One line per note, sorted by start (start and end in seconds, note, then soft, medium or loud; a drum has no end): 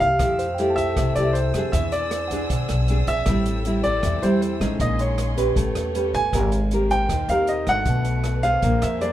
0.00 0.19 C2 medium
0.00 0.19 C3 medium
0.00 0.73 F5 loud
0.00 kick soft
0.00 closed hi-hat soft
0.18 0.93 F2 medium
0.18 0.95 F3 medium
0.18 1.71 A3 medium
0.18 0.45 A3 soft
0.18 0.45 E4 medium
0.18 1.71 G4 medium
0.18 0.45 G4 medium
0.18 4.75 E6 medium
0.18 kick medium
0.18 cross-stick medium
0.18 closed hi-hat medium
0.39 0.91 C5 medium
0.39 closed hi-hat soft
0.55 1.04 G5 soft
0.55 closed hi-hat soft
0.59 1.13 A3 medium
0.59 1.13 E4 medium
0.59 1.14 G4 medium
0.70 1.17 A5 soft
0.76 1.30 A4 medium
0.76 1.12 E5 loud
0.76 kick soft
0.76 closed hi-hat soft
0.96 1.15 C2 medium
0.96 1.72 C3 medium
0.96 kick medium
0.96 cross-stick medium
0.96 closed hi-hat medium
1.15 1.52 C2 medium
1.15 1.52 A3 medium
1.15 1.52 E4 medium
1.15 1.52 G4 medium
1.15 1.36 D5 medium
1.15 closed hi-hat soft
1.33 1.74 C5 medium
1.33 closed hi-hat soft
1.54 1.72 F2 medium
1.54 2.29 C4 medium
1.54 2.29 D4 medium
1.54 2.29 G#4 medium
1.54 kick soft
1.54 cross-stick medium
1.54 closed hi-hat soft
1.72 2.46 E2 loud
1.72 2.49 E3 medium
1.72 3.25 D4 medium
1.72 3.25 G#4 medium
1.72 3.25 C5 medium
1.72 1.93 E5 medium
1.72 kick medium
1.72 closed hi-hat medium
1.92 2.65 D5 medium
1.92 closed hi-hat soft
2.11 2.64 D5 medium
2.11 cross-stick medium
2.11 closed hi-hat soft
2.28 2.77 F#5 soft
2.28 kick soft
2.28 closed hi-hat soft
2.32 2.86 D4 medium
2.32 2.86 G#4 medium
2.50 2.68 B1 medium
2.50 kick medium
2.50 closed hi-hat medium
2.69 3.05 B1 medium
2.69 cross-stick medium
2.69 closed hi-hat soft
2.88 3.24 C4 medium
2.88 3.25 D4 medium
2.88 3.25 G#4 medium
2.88 closed hi-hat soft
3.07 3.25 A#1 medium
3.07 3.87 E5 loud
3.07 kick soft
3.07 closed hi-hat soft
3.26 3.99 A1 medium
3.26 4.03 A2 medium
3.26 3.63 G3 medium
3.26 4.79 C4 medium
3.26 3.63 C4 medium
3.26 3.63 E4 medium
3.26 4.79 G4 medium
3.26 4.79 A4 medium
3.26 kick medium
3.26 cross-stick medium
3.26 closed hi-hat medium
3.46 closed hi-hat soft
3.65 4.20 G3 medium
3.65 4.20 C4 medium
3.65 4.20 E4 medium
3.65 closed hi-hat soft
3.84 4.23 D5 loud
3.84 kick soft
3.84 closed hi-hat soft
4.03 4.21 E2 medium
4.03 4.78 E3 medium
4.03 kick medium
4.03 cross-stick medium
4.03 closed hi-hat medium
4.22 4.58 E2 medium
4.22 4.58 G3 medium
4.22 4.58 C4 medium
4.22 4.58 E4 medium
4.22 4.40 C5 medium
4.22 closed hi-hat soft
4.41 4.81 C5 medium
4.41 closed hi-hat soft
4.60 4.78 A1 medium
4.60 5.34 G#3 medium
4.60 5.34 C#4 medium
4.60 5.35 D#4 medium
4.60 kick soft
4.60 cross-stick medium
4.60 closed hi-hat soft
4.80 5.52 A#1 medium
4.80 5.55 A#2 medium
4.80 5.56 C#4 medium
4.80 5.57 G#4 medium
4.80 5.56 D#5 medium
4.80 5.00 D#5 medium
4.80 5.57 C6 medium
4.80 kick medium
4.80 closed hi-hat medium
4.99 5.73 C#5 medium
4.99 closed hi-hat soft
5.18 cross-stick medium
5.18 closed hi-hat soft
5.37 5.92 C#4 medium
5.37 5.92 G4 medium
5.37 5.92 B4 medium
5.37 kick soft
5.37 closed hi-hat soft
5.56 5.74 A1 medium
5.56 6.31 A3 medium
5.56 6.33 B3 medium
5.56 6.33 G4 medium
5.56 6.32 A4 medium
5.56 6.09 B4 soft
5.56 6.33 C#5 medium
5.56 kick medium
5.56 closed hi-hat medium
5.75 6.11 E2 medium
5.75 cross-stick medium
5.75 closed hi-hat soft
5.95 6.19 C#4 medium
5.95 6.20 G4 medium
5.95 6.20 B4 medium
5.95 closed hi-hat soft
6.13 6.31 G1 medium
6.13 6.93 G#5 loud
6.13 kick soft
6.13 closed hi-hat soft
6.33 7.05 G#1 loud
6.33 7.08 G#3 medium
6.33 7.85 A#3 medium
6.33 6.58 C4 medium
6.33 6.59 G4 medium
6.33 7.85 A#4 medium
6.33 6.58 A#4 medium
6.33 7.85 C5 medium
6.33 kick medium
6.33 cross-stick medium
6.33 closed hi-hat medium
6.52 closed hi-hat soft
6.71 7.10 C4 soft
6.71 7.11 G4 medium
6.71 7.11 A#4 medium
6.71 closed hi-hat soft
6.90 7.30 G5 loud
6.90 kick soft
6.90 closed hi-hat soft
7.09 7.27 D#2 medium
7.09 7.85 D#3 medium
7.09 kick medium
7.09 cross-stick medium
7.09 closed hi-hat medium
7.28 7.64 D#2 medium
7.28 7.65 C4 medium
7.28 7.65 G4 medium
7.28 7.65 A#4 medium
7.28 7.47 F5 medium
7.28 closed hi-hat soft
7.47 7.68 D#5 medium
7.47 closed hi-hat soft
7.67 7.85 G#1 medium
7.67 8.41 A3 medium
7.67 8.41 D4 medium
7.67 8.42 F#4 medium
7.67 8.47 F#5 loud
7.67 kick soft
7.67 cross-stick medium
7.67 closed hi-hat soft
7.82 8.59 B1 medium
7.82 8.61 A3 medium
7.82 9.12 D4 medium
7.82 8.60 F#4 medium
7.82 8.60 B4 medium
7.82 kick medium
7.82 closed hi-hat medium
7.87 8.61 B2 medium
8.05 closed hi-hat soft
8.24 cross-stick medium
8.24 closed hi-hat soft
8.43 8.98 D4 medium
8.43 8.98 G#4 medium
8.43 8.99 C5 medium
8.43 8.83 F5 loud
8.43 kick soft
8.43 closed hi-hat soft
8.61 8.81 A#1 medium
8.61 9.12 A#3 medium
8.61 9.12 G#4 medium
8.61 9.12 A#4 soft
8.61 9.12 C5 medium
8.61 kick medium
8.61 closed hi-hat medium
8.82 9.12 F2 loud
8.82 9.02 E5 medium
8.82 cross-stick medium
8.82 closed hi-hat soft
9.01 9.12 D4 medium
9.01 9.12 G#4 medium
9.01 9.12 C5 medium
9.01 9.12 D5 medium
9.01 closed hi-hat soft